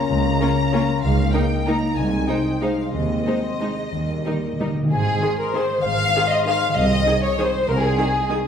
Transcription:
Already playing: harp A#3 F4 A#4 F5, french horn section A#3 C#4, violin section A#5
0.09 double bass section C#2, cello section C#2, harp C#3
0.25 harp A#3
0.41 viola section A#3 C#4, violin section F4 A#4, harp A#4
0.57 harp F5
0.73 viola section A#3 C#4, violin section F4 A#4
0.88 harp F4
1.03 cello section C#2, double bass section C#2, harp C#3, french horn section A#3 D#4, violin section F5
1.18 harp A#3
1.32 viola section A#3 D#4, violin section D#4 A#4 G5, harp A#4
1.51 harp D#5
1.66 viola section A#3 D#4, violin section D#4 A#4 A#5, harp A#4
1.84 harp D#4
1.97 cello section C2, double bass section C2, harp C3, french horn section G#3, violin section G#5
2.13 harp G#3
2.28 viola section G#3 D#4, violin section D#4 C5 G5, harp C5
2.45 harp D#5
2.61 viola section G#3 D#4, violin section D#4 C5 F5, harp G#4
2.78 harp C5
2.93 cello section D#2, double bass section D#2, harp D#3, timpani D#3, french horn section C4, violin section D#5
3.09 harp D#4
3.26 viola section G#3 D#4, violin section D#4 C5, harp G#4
3.43 harp C6
3.60 viola section G#3 D#4, violin section D#4 C5, harp D#5
3.77 harp G#4
3.92 double bass section D#2, cello section D#2, harp D#3, timpani D#3, french horn section G3 A#3
4.00 timpani D#3
4.08 harp D#4
4.15 timpani D#3
4.22 timpani D#3, viola section G3, violin section D#4 A#4, harp G4
4.26 viola section D#4
4.31 timpani D#3
4.38 timpani D#3
4.42 timpani D#3, harp A#5
4.53 timpani D#3
4.60 timpani D#3, viola section G3 D#4, violin section D#4 A#4, harp D#5
4.68 timpani D#3
4.76 timpani D#3, harp G4
4.83 timpani D#3
4.92 double bass section G#1, harp G#2, cello section G#2, violin section G#4
4.99 harp G#3
5.06 harp D#4
5.15 harp C5
5.22 viola section D#3 G#4, harp G#4, violin section C6
5.31 harp D#5
5.38 violin section A#4, harp C6
5.46 harp D#5
5.54 viola section D#3 G#4, harp G#4, violin section C5 C6
5.61 harp C5
5.70 harp G#3
5.78 harp D#3
5.84 double bass section G#1, cello section G#2, harp G#2, violin section F5
5.92 harp G#3
5.99 harp D#4
6.07 harp C5
6.15 viola section D#3 G#4, harp G#4, violin section C6
6.23 harp D#5
6.30 violin section D#5, harp C6
6.38 harp D#5
6.46 viola section D#3 G#4, harp G#4, violin section F5 C6
6.54 harp C5
6.62 harp G#3
6.68 harp D#3, violin section F5
6.76 cello section C2, double bass section C2, harp C3, violin section D#5
6.83 harp G#3
6.90 harp D#4
6.98 harp D#5
7.06 viola section D#3 G#4, harp G#4, violin section D#6
7.15 harp D#5
7.23 violin section C#5, harp D#6
7.31 harp D#5
7.38 viola section D#3 G#4, harp G#4, violin section C5 D#6
7.46 harp D#5
7.54 harp G#3
7.62 harp C4
7.68 cello section C2, double bass section C2, harp C3, violin section A#4
7.77 harp G#3
7.83 harp D#4, violin section G#4
7.91 harp D#5
7.98 viola section D#3 G#4, violin section D#6
8.07 harp D#5
8.15 harp D#6
8.23 harp D#5
8.30 viola section D#3 G#4, harp G#4, violin section D#6
8.38 harp D#5

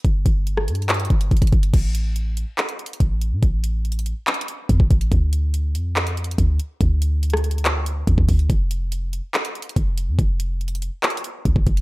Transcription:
0.05 808-style bass G1, kick, closed hi-hat
0.26 808-style bass G1, kick, closed hi-hat
0.47 closed hi-hat
0.57 cross-stick
0.68 808-style bass G2, closed hi-hat
0.75 closed hi-hat
0.82 closed hi-hat
0.89 clap, closed hi-hat
0.94 closed hi-hat
1.00 closed hi-hat
1.05 closed hi-hat
1.10 808-style bass G1, kick, closed hi-hat
1.21 closed hi-hat
1.31 808-style bass G1, kick, closed hi-hat
1.37 closed hi-hat
1.42 808-style bass G1, kick, closed hi-hat
1.47 closed hi-hat
1.52 808-style bass G1, kick, closed hi-hat
1.63 closed hi-hat
1.74 808-style bass A1, kick, closed hi-hat, crash
1.95 closed hi-hat
2.16 closed hi-hat
2.37 closed hi-hat
2.58 clap, closed hi-hat
2.69 closed hi-hat
2.79 closed hi-hat
2.86 closed hi-hat
2.93 closed hi-hat
3.00 808-style bass A1, kick, closed hi-hat
3.21 closed hi-hat
3.32 808-style bass A2
3.43 808-style bass A1, kick, closed hi-hat
3.64 closed hi-hat
3.85 closed hi-hat
3.92 closed hi-hat
3.99 closed hi-hat
4.06 closed hi-hat
4.27 clap, closed hi-hat
4.34 closed hi-hat
4.41 closed hi-hat
4.48 closed hi-hat
4.69 808-style bass E2, kick, closed hi-hat
4.80 808-style bass A1, kick
4.91 808-style bass A1, kick, closed hi-hat
5.01 closed hi-hat
5.12 808-style bass D2, kick, closed hi-hat
5.33 closed hi-hat
5.54 closed hi-hat
5.75 808-style bass F2, closed hi-hat
5.96 clap, closed hi-hat
6.07 closed hi-hat
6.17 closed hi-hat
6.24 closed hi-hat
6.31 closed hi-hat
6.38 808-style bass D2, kick, closed hi-hat
6.60 closed hi-hat
6.81 808-style bass D2, kick, closed hi-hat
7.02 closed hi-hat
7.23 closed hi-hat
7.30 cross-stick, closed hi-hat
7.37 closed hi-hat
7.44 closed hi-hat
7.51 closed hi-hat
7.58 closed hi-hat
7.65 clap, closed hi-hat
7.86 closed hi-hat
8.07 808-style bass D2, kick, closed hi-hat
8.18 808-style bass D2, kick
8.29 808-style bass D2, kick, closed hi-hat, open hi-hat
8.39 closed hi-hat
8.50 808-style bass F1, kick, closed hi-hat
8.71 closed hi-hat
8.92 closed hi-hat
9.13 closed hi-hat
9.34 clap, closed hi-hat
9.45 closed hi-hat
9.55 closed hi-hat
9.62 closed hi-hat
9.69 closed hi-hat
9.76 808-style bass F1, kick, closed hi-hat
9.98 closed hi-hat
10.08 808-style bass F2
10.19 808-style bass F1, kick, closed hi-hat
10.40 closed hi-hat
10.61 closed hi-hat
10.68 closed hi-hat
10.75 closed hi-hat
10.82 closed hi-hat
11.03 clap, closed hi-hat
11.10 closed hi-hat
11.17 closed hi-hat
11.24 closed hi-hat
11.45 808-style bass C2, kick, closed hi-hat
11.56 808-style bass F1, kick
11.67 808-style bass F1, kick, closed hi-hat
11.77 closed hi-hat

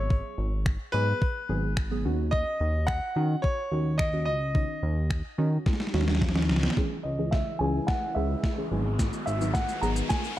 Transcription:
Already playing: analog synth bass G#1, synth stab F#3 B3 G#4, grand piano C#5
0.10 kick
0.38 analog synth bass G#1
0.66 finger snap, kick
0.92 analog synth bass G#2, synth stab F#3 B3 G#4, grand piano B4
1.22 kick
1.49 analog synth bass G#1, synth stab F#3 B3 G#4
1.77 finger snap, kick
1.91 synth stab F#3 B3 G#4
2.05 analog synth bass D#2, synth stab D#3 C#4 F#4
2.31 grand piano D#5, kick
2.61 analog synth bass D#2
2.87 grand piano F#5, finger snap, kick
3.16 synth stab D#3 C#4 F#4, analog synth bass D#3
3.42 grand piano C#5, kick
3.71 analog synth bass D#2, synth stab D#3 C#4 F#4
3.98 grand piano D#5, finger snap, kick
4.13 synth stab D#3 C#4 F#4
4.25 analog synth bass C#2, grand piano D#5
4.55 synth stab D#3 C#4 D#4, kick
4.83 analog synth bass D#2
5.10 finger snap, kick
5.38 synth stab D#3 C#4 F#4, analog synth bass D#3
5.66 kick, snare
5.73 snare
5.80 snare
5.87 snare
5.94 analog synth bass D#2, synth stab D#3 C#4 F#4, snare
6.01 snare
6.08 snare
6.15 snare
6.21 kick, snare
6.29 snare
6.35 synth stab D#3 C#4 D#4, snare
6.42 snare
6.49 analog synth bass C#2, snare
6.56 snare
6.63 snare
6.70 snare
6.77 analog synth pad C#3 E3 G#3 E4, synth stab E3 C#4 G#4, kick, snare, riser
7.03 analog synth bass C#2, grand piano D#5
7.19 synth stab E3 C#4 G#4
7.31 grand piano E5, kick, snare
7.59 analog synth bass C#2, synth stab E3 C#4 G#4, grand piano G#5
7.87 grand piano F#5, kick, snare
8.15 analog synth bass C#2, synth stab E3 C#4 G#4, grand piano E5
8.44 kick, snare
8.57 synth stab E3 C#4 G#4
8.71 analog synth bass G#1, analog synth pad D#3 B3 F#4, synth stab F#3 B3 G#4
8.99 kick, snare, shaker
9.13 shaker
9.26 analog synth bass G#1, grand piano E5, shaker
9.41 synth stab F#3 B3 D#4, shaker
9.54 grand piano F#5, kick, snare, shaker
9.69 shaker
9.81 analog synth bass G#1, synth stab F#3 B3 G#4, grand piano A#5, shaker
9.96 shaker
10.09 grand piano G#5, kick, snare, shaker
10.24 shaker

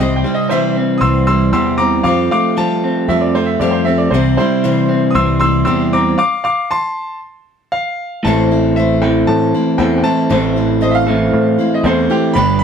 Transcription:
Already playing: clean electric guitar C4 G4
0.00 picked electric bass C2, steel-string acoustic guitar C3 E3 G3 C4 E4 C5, clean electric guitar C3, upright piano D#5
0.16 upright piano G5
0.24 clean electric guitar G3, steel-string acoustic guitar G3 C4 E4 C5
0.34 upright piano D#5
0.49 steel-string acoustic guitar C3 E3 G3 C4 E4 C5, clean electric guitar E3, upright piano C5 E5
0.77 clean electric guitar C4
0.98 grand piano C6 D#6 E6
1.02 picked electric bass C2, clean electric guitar E3, steel-string acoustic guitar G3 C4 E4 C5
1.27 clean electric guitar G3, steel-string acoustic guitar G3 C4 E4 C5, grand piano C6 E6
1.53 picked electric bass E2, steel-string acoustic guitar C3 E3 G3 C4 E4 C5, clean electric guitar G4, grand piano C6 E6
1.78 clean electric guitar C4, steel-string acoustic guitar C4 E4 C5, grand piano A#5 D6
1.82 steel-string acoustic guitar G3
2.03 picked electric bass F2, steel-string acoustic guitar F3 G3 C4 G4 A4, clean electric guitar F3, grand piano F5 D6
2.31 clean electric guitar A3, steel-string acoustic guitar C4 G4 A4, grand piano F5 D6
2.57 steel-string acoustic guitar F3 G3 C4 G4 A4, clean electric guitar F3, grand piano A5
2.84 clean electric guitar C4
3.08 picked electric bass F2, clean electric guitar F3, steel-string acoustic guitar G3 C4 G4 A4, upright piano E5
3.21 upright piano D5
3.35 clean electric guitar A3, steel-string acoustic guitar C4 G4 A4, upright piano C5
3.46 upright piano E5
3.59 picked electric bass F2, steel-string acoustic guitar F3 G3 C4 G4 A4, clean electric guitar G4, upright piano D5
3.71 upright piano C5
3.85 clean electric guitar C4, steel-string acoustic guitar G4 A4, upright piano E5
3.89 steel-string acoustic guitar C4
3.98 upright piano D5
4.11 picked electric bass C2, clean electric guitar C3, steel-string acoustic guitar C3 E3 G3 C4 C5, upright piano C5
4.15 steel-string acoustic guitar E4
4.37 clean electric guitar G3, steel-string acoustic guitar G3 C4 E4 C5, upright piano E4 C5
4.63 steel-string acoustic guitar C3 E3 G3 C4 E4 C5, clean electric guitar E3
4.89 clean electric guitar C4
5.11 grand piano D#6
5.15 picked electric bass C2, clean electric guitar E3, steel-string acoustic guitar G3 C4 E4 C5, grand piano C6 E6
5.40 clean electric guitar G3, steel-string acoustic guitar C4 C5, grand piano C6 E6
5.44 steel-string acoustic guitar G3 E4
5.65 picked electric bass E2, steel-string acoustic guitar C3 E3 G3 C4 E4 C5, clean electric guitar G4, grand piano C6 E6
5.93 steel-string acoustic guitar G3 C4 E4 C5, clean electric guitar C4, grand piano A#5 D6
6.18 grand piano F5 D6
6.44 grand piano F5 D6
6.71 grand piano A5 C6
7.72 grand piano F5
8.23 picked electric bass A1, clean electric guitar A2 E3 C4 E4, steel-string acoustic guitar A2 E3 C4, grand piano A5
8.27 steel-string acoustic guitar A3 E4 C5, clean electric guitar A4
8.51 steel-string acoustic guitar A3 C4 E4 C5
8.76 steel-string acoustic guitar A3 C4 E4 C5, grand piano E5
9.02 clean electric guitar A2 E3 C4 E4 A4, grand piano G5
9.27 picked electric bass A2, grand piano A5
9.54 steel-string acoustic guitar A3 C4 E4 C5
9.78 picked electric bass E2, clean electric guitar A2 E3 C4 E4 A4, steel-string acoustic guitar A3 C4 E4 C5, grand piano G5
9.98 grand piano G5
10.04 steel-string acoustic guitar A3 C4 E4 C5, grand piano A5
10.30 picked electric bass A1, steel-string acoustic guitar A2 E3 A3 C4 E4 C5, clean electric guitar A2 E3 C4 E4
10.34 clean electric guitar A4
10.56 steel-string acoustic guitar A3 C4 E4 C5
10.81 steel-string acoustic guitar A3 C4 C5, upright piano D#5
10.91 upright piano E5 F5
11.07 clean electric guitar A2 E3 C4 E4 A4
11.33 picked electric bass A2
11.58 steel-string acoustic guitar A3 C4 E4 C5
11.74 upright piano D#5
11.84 picked electric bass E2, clean electric guitar A2 E3 C4 E4 A4, steel-string acoustic guitar A3 C4 E4 C5, upright piano C5
12.10 steel-string acoustic guitar A3 C4 E4 C5, upright piano G4
12.34 picked electric bass G1, clean electric guitar G2 D3 G3 B3, steel-string acoustic guitar G3 D4 G4 B4, grand piano B5
12.38 clean electric guitar D4 G4
12.59 grand piano B5

